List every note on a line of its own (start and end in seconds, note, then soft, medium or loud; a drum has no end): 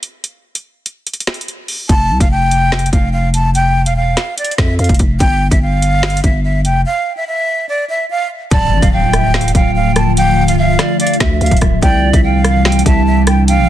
0.03 closed hi-hat medium
0.24 closed hi-hat medium
0.55 closed hi-hat medium
0.86 closed hi-hat medium
1.07 closed hi-hat medium
1.14 closed hi-hat medium
1.20 closed hi-hat medium
1.27 snare loud
1.27 closed hi-hat medium
1.34 closed hi-hat medium
1.41 closed hi-hat medium
1.48 closed hi-hat medium
1.68 open hi-hat medium
1.89 2.12 F1 loud
1.89 2.18 A5 loud
1.89 kick loud
1.89 closed hi-hat medium
2.10 2.20 C2 loud
2.20 2.90 F1 loud
2.20 2.29 F5 medium
2.20 kick loud
2.20 closed hi-hat medium
2.31 2.89 G5 medium
2.51 closed hi-hat medium
2.72 snare loud
2.72 closed hi-hat soft
2.79 closed hi-hat medium
2.86 closed hi-hat medium
2.93 3.87 F1 loud
2.93 3.09 F5 medium
2.93 kick medium
2.93 closed hi-hat medium
3.13 3.29 F5 medium
3.34 3.50 A5 medium
3.34 closed hi-hat medium
3.55 3.84 G5 loud
3.55 closed hi-hat medium
3.86 4.15 E1 loud
3.86 3.94 F5 medium
3.86 closed hi-hat medium
3.96 4.35 F5 medium
4.17 snare medium
4.17 closed hi-hat medium
4.38 4.54 D5 medium
4.38 closed hi-hat medium
4.45 closed hi-hat medium
4.51 closed hi-hat soft
4.58 4.78 F2 loud
4.58 4.74 E5 medium
4.58 kick medium
4.58 snare loud
4.58 closed hi-hat medium
4.79 4.89 F2 loud
4.79 4.95 F5 medium
4.79 closed hi-hat soft
4.84 closed hi-hat medium
4.89 4.99 F1 loud
4.89 kick medium
4.89 closed hi-hat medium
4.94 closed hi-hat medium
4.99 5.20 F1 loud
4.99 kick medium
4.99 closed hi-hat medium
5.20 5.50 G1 loud
5.20 5.50 G5 loud
5.20 kick loud
5.20 closed hi-hat medium
5.51 6.21 G1 loud
5.51 5.59 E5 medium
5.51 kick loud
5.51 closed hi-hat medium
5.62 6.20 F5 medium
5.82 closed hi-hat medium
6.03 snare loud
6.03 closed hi-hat medium
6.10 closed hi-hat medium
6.17 closed hi-hat medium
6.24 6.67 G1 loud
6.24 6.40 E5 medium
6.24 kick medium
6.24 closed hi-hat medium
6.44 6.61 E5 medium
6.65 6.85 F1 loud
6.65 6.81 G5 medium
6.65 closed hi-hat medium
6.86 7.15 F5 medium
7.17 7.25 E5 medium
7.27 7.66 E5 medium
7.69 7.85 D5 medium
7.89 8.06 E5 medium
8.10 8.26 F5 medium
8.51 8.74 D1 loud
8.51 11.79 D3 medium
8.51 11.79 F3 medium
8.51 11.79 A3 medium
8.51 11.79 F4 medium
8.51 8.90 D5 loud
8.51 8.81 A5 medium
8.51 kick loud
8.51 closed hi-hat medium
8.51 impact medium
8.72 8.82 A1 loud
8.82 9.52 D1 loud
8.82 8.90 F5 medium
8.82 kick loud
8.82 closed hi-hat medium
8.92 9.12 F5 medium
8.92 9.51 G5 medium
9.13 9.33 E5 medium
9.13 cross-stick loud
9.13 closed hi-hat medium
9.34 9.54 F5 medium
9.34 snare loud
9.34 closed hi-hat soft
9.41 closed hi-hat medium
9.48 closed hi-hat medium
9.55 10.49 D1 loud
9.55 9.71 F5 medium
9.55 10.13 G5 medium
9.55 kick medium
9.55 closed hi-hat medium
9.76 9.92 F5 medium
9.96 10.12 A5 medium
9.96 cross-stick loud
9.96 closed hi-hat medium
10.17 10.56 F5 loud
10.17 10.46 G5 loud
10.17 closed hi-hat medium
10.48 10.77 C1 loud
10.48 10.56 F5 medium
10.48 closed hi-hat medium
10.58 10.78 E5 medium
10.58 10.97 F5 medium
10.79 10.99 D5 medium
10.79 cross-stick medium
10.79 snare medium
10.79 closed hi-hat medium
11.00 11.16 D5 medium
11.00 11.19 F5 medium
11.00 closed hi-hat medium
11.07 closed hi-hat medium
11.13 closed hi-hat soft
11.20 11.40 D2 loud
11.20 11.79 E5 medium
11.20 11.37 E5 medium
11.20 kick medium
11.20 snare loud
11.20 closed hi-hat medium
11.41 11.51 D2 loud
11.41 11.57 F5 medium
11.41 closed hi-hat soft
11.46 closed hi-hat medium
11.51 11.61 D1 loud
11.51 kick medium
11.51 closed hi-hat medium
11.57 closed hi-hat medium
11.61 11.82 D1 loud
11.61 kick loud
11.61 cross-stick loud
11.61 closed hi-hat medium
11.82 12.12 C2 loud
11.82 13.69 C3 medium
11.82 13.69 E3 medium
11.82 13.69 G3 medium
11.82 13.69 D4 medium
11.82 12.21 D5 loud
11.82 12.12 G5 loud
11.82 kick loud
11.82 closed hi-hat medium
12.13 12.83 C2 loud
12.13 12.22 E5 medium
12.13 kick loud
12.13 closed hi-hat medium
12.23 12.82 F5 medium
12.23 12.43 G5 medium
12.44 12.64 F5 medium
12.44 cross-stick loud
12.44 closed hi-hat medium
12.65 12.85 G5 medium
12.65 snare loud
12.65 closed hi-hat soft
12.72 closed hi-hat medium
12.79 closed hi-hat medium
12.86 13.60 C2 loud
12.86 13.02 E5 medium
12.86 13.20 A5 medium
12.86 kick medium
12.86 closed hi-hat medium
13.06 13.23 E5 medium
13.27 13.43 G5 medium
13.27 cross-stick loud
13.27 closed hi-hat medium
13.48 13.69 F5 loud
13.48 13.69 G5 loud
13.48 closed hi-hat medium
13.58 13.69 A#1 loud